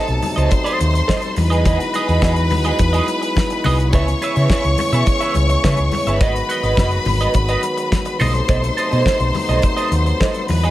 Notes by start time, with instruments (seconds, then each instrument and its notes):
Already playing: french horn section B2 C3 F#3 A3 D#4, clean electric guitar A4, string section A4 A5
0.08 picked electric bass B1, muted clean electric guitar stroke, closed hi-hat
0.22 muted clean electric guitar stroke, open hi-hat, high conga, low conga
0.36 picked electric bass C#2, clean electric guitar A4 C5 D#5, closed hi-hat
0.51 string section C5 C6, muted clean electric guitar stroke, kick, closed hi-hat
0.64 clean electric guitar A4 C5 D#5, closed hi-hat
0.79 picked electric bass D#2, muted clean electric guitar stroke, closed hi-hat, muted conga
0.94 muted clean electric guitar stroke, closed hi-hat
1.08 clean electric guitar A4 C5 D#5, kick, snare, muted conga, high conga
1.22 muted clean electric guitar stroke, closed hi-hat
1.36 picked electric bass E2, french horn section F#3 G#3 B3 D#4 E4, string section B4 B5, muted clean electric guitar stroke, open hi-hat, muted conga, high conga, low conga
1.50 clean electric guitar F#4 G#4 D#5, closed hi-hat
1.64 clean electric guitar F#4 G#4 D#5, kick, closed hi-hat, muted conga, low conga
1.80 muted clean electric guitar stroke, closed hi-hat
1.94 clean electric guitar F#4 G#4 D#5, closed hi-hat, muted conga
2.08 picked electric bass E2, clean electric guitar F#4 G#4 D#5, closed hi-hat
2.22 picked electric bass E2, clean electric guitar F#4 G#4 D#5, kick, snare, muted conga
2.36 muted clean electric guitar stroke, closed hi-hat
2.50 picked electric bass D#2, muted clean electric guitar stroke, open hi-hat, high conga, low conga
2.65 clean electric guitar F#4 G#4 D#5, closed hi-hat
2.79 picked electric bass E2, muted clean electric guitar stroke, kick, closed hi-hat
2.93 clean electric guitar F#4 G#4 D#5, closed hi-hat
3.07 muted clean electric guitar stroke, closed hi-hat, muted conga
3.22 muted clean electric guitar stroke, closed hi-hat
3.36 kick, snare, high conga
3.50 muted clean electric guitar stroke, closed hi-hat
3.64 picked electric bass C2, clean electric guitar F#4 G#4 D#5, open hi-hat, high conga, low conga
3.79 muted clean electric guitar stroke, closed hi-hat
3.92 picked electric bass C#2, french horn section C#3 E3 G#3, clean electric guitar G#4 B4 E5, string section C#5 C#6, kick, closed hi-hat, low conga
4.08 muted clean electric guitar stroke, closed hi-hat
4.21 clean electric guitar G#4 B4 E5, closed hi-hat, muted conga
4.36 picked electric bass C#3, clean electric guitar G#4 B4 E5, closed hi-hat
4.49 clean electric guitar G#4 B4 E5, kick, snare, muted conga
4.64 picked electric bass C#2, muted clean electric guitar stroke, closed hi-hat
4.78 muted clean electric guitar stroke, open hi-hat, muted conga, high conga, low conga
4.92 picked electric bass B2, clean electric guitar G#4 B4 E5, closed hi-hat
5.06 muted clean electric guitar stroke, kick, closed hi-hat, muted conga
5.20 clean electric guitar G#4 B4 E5, closed hi-hat
5.34 picked electric bass C#2, muted clean electric guitar stroke, closed hi-hat, muted conga, high conga
5.49 muted clean electric guitar stroke, closed hi-hat
5.64 picked electric bass C#3, clean electric guitar G#4 B4 E5, kick, snare, muted conga, high conga
5.77 picked electric bass C#2, muted clean electric guitar stroke, closed hi-hat
5.91 muted clean electric guitar stroke, open hi-hat, muted conga, high conga, low conga
6.07 picked electric bass G1, clean electric guitar G#4 B4 E5, closed hi-hat
6.20 picked electric bass G#1, french horn section D#3 F#3 F#4, clean electric guitar F#4 B4 D#5, string section B4 B5, kick, closed hi-hat, muted conga, low conga
6.36 muted clean electric guitar stroke, closed hi-hat
6.49 clean electric guitar F#4 B4 D#5, closed hi-hat, muted conga
6.63 picked electric bass G#1, clean electric guitar F#4 B4 D#5, closed hi-hat
6.77 picked electric bass F#1, clean electric guitar F#4 B4 D#5, kick, snare
6.91 muted clean electric guitar stroke, closed hi-hat
7.05 picked electric bass G#1, muted clean electric guitar stroke, open hi-hat, muted conga, high conga, low conga
7.21 clean electric guitar F#4 B4 D#5, closed hi-hat
7.34 picked electric bass G#1, muted clean electric guitar stroke, kick, closed hi-hat, muted conga
7.49 clean electric guitar F#4 B4 D#5, closed hi-hat
7.63 muted clean electric guitar stroke, closed hi-hat, muted conga
7.77 muted clean electric guitar stroke, closed hi-hat
7.92 kick, snare, muted conga, high conga
8.05 muted clean electric guitar stroke, closed hi-hat
8.19 picked electric bass B1, french horn section C3 A3 B3 D#4, clean electric guitar A4 C5 D#5, string section C5 C6, open hi-hat, muted conga, high conga, low conga
8.34 muted clean electric guitar stroke, closed hi-hat
8.48 picked electric bass B1, clean electric guitar A4 C5 D#5, kick, closed hi-hat, muted conga, low conga
8.63 muted clean electric guitar stroke, closed hi-hat
8.77 clean electric guitar A4 C5 D#5, closed hi-hat, muted conga
8.91 picked electric bass B2, clean electric guitar A4 C5 D#5, closed hi-hat
9.05 clean electric guitar A4 C5 D#5, kick, snare, muted conga
9.20 picked electric bass B1, muted clean electric guitar stroke, closed hi-hat
9.34 muted clean electric guitar stroke, open hi-hat, muted conga, high conga, low conga
9.49 picked electric bass B1, clean electric guitar A4 C5 D#5, closed hi-hat
9.62 muted clean electric guitar stroke, kick, closed hi-hat, muted conga
9.77 clean electric guitar A4 C5 D#5, closed hi-hat
9.91 picked electric bass D#2, closed hi-hat, muted conga
10.06 muted clean electric guitar stroke, closed hi-hat
10.20 clean electric guitar A4 C5 D#5, kick, snare, muted conga, high conga
10.34 muted clean electric guitar stroke, closed hi-hat
10.48 picked electric bass E2, french horn section G#3 D#4 E4, string section B4 B5, muted clean electric guitar stroke, open hi-hat, high conga, low conga
10.63 clean electric guitar F#4 G#4 D#5, closed hi-hat